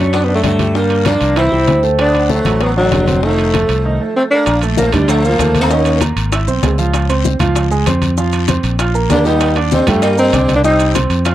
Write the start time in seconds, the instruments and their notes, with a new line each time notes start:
Already playing: fingered electric bass F#2, grand piano F#3 F#4, sitar A3, tenor saxophone C#4
0.13 sitar B3, tenor saxophone D4, high bongo, high conga, high timbale, long guiro
0.24 sitar G3, tenor saxophone B3, high conga
0.28 grand piano D4 D5
0.34 sitar F#3, tenor saxophone A3
0.44 fingered electric bass G2, sitar F#3, tenor saxophone A3, high bongo, low bongo, high conga, high timbale, short guiro
0.59 grand piano G3 G4, high bongo, high conga, high timbale, short guiro
0.75 grand piano D3 D4, sitar G3, tenor saxophone A#3, high bongo, high conga, long guiro
0.90 high bongo, high conga, high timbale
1.05 grand piano F3 F4, sitar A#3, tenor saxophone D4, high bongo, high conga, high timbale, short guiro
1.21 fingered electric bass C2, high timbale, short guiro
1.36 grand piano E3 E4, sitar C4, tenor saxophone E4, high bongo, high timbale, long guiro
1.52 fingered electric bass C2, grand piano G3 G4, high bongo, high conga
1.67 fingered electric bass D2, high bongo, low bongo, high conga, high timbale, short guiro
1.83 grand piano A3 A4, high bongo, short guiro
1.99 sitar B3, tenor saxophone D4, high bongo, high timbale, long guiro
2.14 grand piano D3 D4, high bongo, high conga, high timbale
2.30 sitar F#3, tenor saxophone A3, high bongo, high conga, short guiro
2.45 fingered electric bass A1, grand piano F#3 F#4, high bongo, high conga, high timbale, short guiro
2.61 sitar F#3, tenor saxophone B3, high bongo, high conga, high timbale, long guiro
2.77 sitar D3, tenor saxophone F#3, grand piano D4 D5, high conga
2.92 fingered electric bass F1, high bongo, low bongo, high conga, high timbale, low timbale, short guiro
3.07 grand piano C4 C5, high bongo, high conga, high timbale, short guiro
3.23 grand piano D#3 D#4, sitar F3, tenor saxophone A3, high bongo, long guiro
3.38 high bongo, high conga, high timbale
3.54 grand piano A3 A4, high bongo, high conga, high timbale, short guiro
3.69 fingered electric bass C2, high timbale, short guiro
3.85 grand piano D#3 D#4
4.01 grand piano A3 A4
4.16 sitar A3, tenor saxophone C4
4.31 grand piano A3 A4, sitar A#3, tenor saxophone D4
4.46 fingered electric bass A#1, high bongo, high conga, high timbale, long guiro, maracas
4.61 grand piano A3 A4 A5, high bongo, high conga, high timbale, maracas
4.77 sitar F3, tenor saxophone A#3, high bongo, high conga, short guiro, maracas
4.92 fingered electric bass D2, grand piano D3 D4 D5, sitar D#3, tenor saxophone G3, high bongo, high conga, low conga, high timbale, short guiro, maracas
5.08 sitar F3, tenor saxophone A3, high bongo, high conga, high timbale, long guiro, maracas
5.24 grand piano F3 F4 F5, sitar F3, tenor saxophone A#3, high conga, maracas
5.39 fingered electric bass D#2, grand piano A3 A4 A5, high bongo, low bongo, high conga, high timbale, short guiro, maracas
5.55 high bongo, high conga, high timbale, short guiro, maracas
5.61 sitar A3, tenor saxophone C4
5.71 grand piano D#3 D#4 D#5, sitar A#3, tenor saxophone C#4, high bongo, long guiro, maracas
5.85 high bongo, high conga, high timbale, maracas
6.01 grand piano A#3 A#4 A#5, high bongo, high conga, high timbale, short guiro, maracas
6.16 fingered electric bass G#1, high timbale, short guiro, maracas
6.32 grand piano E4 E5 E6, high bongo, high conga, high timbale, long guiro, maracas
6.47 fingered electric bass B1, grand piano C4 C5 C6, high bongo, high conga, maracas
6.63 fingered electric bass C#2, high bongo, low bongo, high conga, high timbale, low timbale, short guiro, maracas
6.78 grand piano F3 F4 F5, high bongo, high conga, short guiro, maracas
6.93 high bongo, high conga, high timbale, long guiro, maracas
7.09 grand piano C4 C5 C6, high bongo, high conga, high timbale, maracas
7.24 high bongo, high conga, short guiro, maracas
7.39 fingered electric bass C#2, grand piano F3 F4 F5, high bongo, high conga, low conga, high timbale, short guiro, maracas
7.55 high bongo, high conga, high timbale, long guiro, maracas
7.71 grand piano G#3 G#4 G#5, high conga, maracas
7.86 fingered electric bass F2, grand piano C4 C5 C6, high bongo, low bongo, high conga, high timbale, short guiro, maracas
8.02 high bongo, high conga, high timbale, short guiro, maracas
8.17 grand piano F3 F4 F5, high bongo, high conga, long guiro, maracas
8.32 high bongo, high conga, high timbale, maracas
8.48 grand piano C4 C5 C6, high bongo, high conga, high timbale, short guiro, maracas
8.63 fingered electric bass A#1, high timbale, short guiro, maracas
8.79 grand piano F4 F5 F6, high bongo, high conga, high timbale, long guiro, maracas
8.94 grand piano A#3 A#4 A#5, high bongo, high conga, maracas
9.09 fingered electric bass D#2, sitar A#3, tenor saxophone D4, high bongo, low bongo, high conga, high timbale, low timbale, short guiro, maracas
9.25 grand piano G3 G4 G5, sitar A#3, tenor saxophone D#4, high bongo, short guiro, maracas
9.40 high bongo, high conga, high timbale, long guiro, maracas
9.56 grand piano D4 D5 D6, high bongo, high conga, high timbale
9.71 sitar G3, tenor saxophone C4, high bongo, high conga, short guiro, maracas
9.87 fingered electric bass G2, sitar F3, grand piano G3 G4 G5, tenor saxophone A3, high conga, low conga, high timbale, short guiro, maracas
10.02 sitar G3, tenor saxophone A#3, high bongo, high conga, high timbale, long guiro, maracas
10.18 sitar G3, grand piano A#3 A#4 A#5, tenor saxophone C4, high conga, maracas
10.33 fingered electric bass C2, grand piano D4 D5 D6, high bongo, low bongo, high conga, high timbale, short guiro, maracas
10.48 high bongo, high conga, high timbale, short guiro, maracas
10.55 sitar A#3, tenor saxophone D4
10.64 grand piano G3 G4 G5, sitar C4, tenor saxophone D#4, high bongo, long guiro, maracas
10.79 high bongo, high conga, high timbale, maracas
10.94 grand piano C4 C5 C6, high bongo, high conga, high timbale, short guiro, maracas
11.10 fingered electric bass F2, high timbale, short guiro, maracas
11.25 grand piano F4 F5 F6, high bongo, high conga, high timbale, long guiro, maracas